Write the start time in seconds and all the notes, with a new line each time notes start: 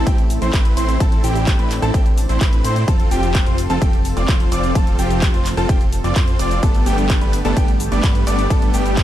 Already playing: A3 C4 E4
0.07 A1 C4 E4 G4 G5, kick, closed hi-hat, ride, shaker
0.18 closed hi-hat, shaker
0.30 open hi-hat, shaker
0.42 A1 C4 E4 C5 C6, closed hi-hat, shaker
0.53 A1 C4 E4 B4 B5, kick, clap, closed hi-hat, ride, shaker
0.65 closed hi-hat, shaker
0.77 A1 C4 E4 C5 C6, open hi-hat, shaker
0.89 closed hi-hat, shaker
1.00 A1 C4 D4 E4 A4 A5, kick, closed hi-hat, ride, shaker
1.12 closed hi-hat, shaker
1.24 A1 C4 E4 G4 G5, open hi-hat, shaker
1.36 closed hi-hat, shaker
1.47 kick, clap, closed hi-hat, ride, shaker
1.59 A1 C4 E4 B4 B5, closed hi-hat, shaker
1.71 clap, open hi-hat, shaker
1.82 A1 C4 E4 A4 A5, cross-stick, closed hi-hat, shaker
1.94 A1 C4 E4 G4 G5, kick, closed hi-hat, ride, shaker
2.06 closed hi-hat, shaker
2.18 open hi-hat, shaker
2.29 A1 C4 E4 C5 C6, closed hi-hat, shaker
2.41 A1 C4 E4 B4 B5, kick, clap, closed hi-hat, ride, shaker
2.53 closed hi-hat, shaker
2.64 A2 C4 E4 C5 C6, open hi-hat, shaker
2.76 closed hi-hat, shaker
2.88 F1 F3 C4 F4 A4 A5, kick, closed hi-hat, ride, shaker
3.00 closed hi-hat, shaker
3.11 F1 C4 F4 G4 G5, open hi-hat, shaker
3.23 closed hi-hat, shaker
3.35 kick, clap, closed hi-hat, ride, shaker
3.46 F1 C4 F4 C5 C6, closed hi-hat, shaker
3.58 open hi-hat, shaker
3.70 F1 C4 F4 A4 A5, closed hi-hat, shaker
3.82 F1 C4 F4 G4 G5, kick, closed hi-hat, ride, shaker
3.93 closed hi-hat, shaker
4.05 open hi-hat, shaker
4.17 F1 C4 F4 D5 D6, closed hi-hat, shaker
4.28 F1 C4 F4 C5 C6, kick, clap, closed hi-hat, ride, shaker
4.40 closed hi-hat, shaker
4.52 F1 C4 F4 D5 D6, open hi-hat, shaker
4.64 closed hi-hat, shaker
4.75 F1 C4 F4 A4 A5, kick, closed hi-hat, ride, shaker
4.87 closed hi-hat, shaker
4.99 F1 C4 F4 G4 G5, open hi-hat, shaker
5.11 closed hi-hat, shaker
5.22 kick, clap, closed hi-hat, ride, shaker
5.34 F1 C4 F4 C5 C6, closed hi-hat, shaker
5.46 clap, open hi-hat, shaker
5.57 F1 C4 F4 A4 A5, cross-stick, closed hi-hat, shaker
5.69 F1 C4 F4 G4 G5, kick, closed hi-hat, ride, shaker
5.81 closed hi-hat, shaker
5.93 open hi-hat, shaker
6.04 F1 C4 F4 D5 D6, closed hi-hat, shaker
6.16 F2 C4 F4 C5 C6, kick, clap, closed hi-hat, ride, shaker
6.28 closed hi-hat, shaker
6.39 F1 C4 F4 D5 D6, open hi-hat, shaker
6.51 closed hi-hat, shaker
6.63 G1 G3 A3 B3 D4 G4 A4 A5, kick, closed hi-hat, ride, shaker
6.75 closed hi-hat, shaker
6.86 G1 G3 A3 B3 D4 G4 G5, open hi-hat, shaker
6.98 closed hi-hat, shaker
7.10 kick, clap, closed hi-hat, ride, shaker
7.21 G1 G3 A3 B3 D4 B4 B5, closed hi-hat, shaker
7.33 open hi-hat, shaker
7.45 G1 G3 A3 B3 D4 A4 A5, closed hi-hat, shaker
7.57 G1 G3 A3 B3 D4 G4 G5, kick, closed hi-hat, ride, shaker
7.68 closed hi-hat, shaker
7.80 open hi-hat, shaker
7.92 G1 G3 A3 B3 D4 D5 D6, closed hi-hat, shaker
8.03 G1 G3 A3 B3 D4 B4 B5, kick, clap, closed hi-hat, ride, shaker
8.15 closed hi-hat, shaker
8.27 G1 G3 A3 B3 D4 D5 D6, open hi-hat, shaker
8.39 closed hi-hat, shaker
8.50 G1 G3 A3 B3 D4 A4 A5, kick, closed hi-hat, ride, shaker
8.62 closed hi-hat, shaker
8.74 G1 G3 A3 B3 D4 G4 G5, open hi-hat, shaker
8.86 closed hi-hat, shaker
8.97 kick, clap, closed hi-hat, ride, shaker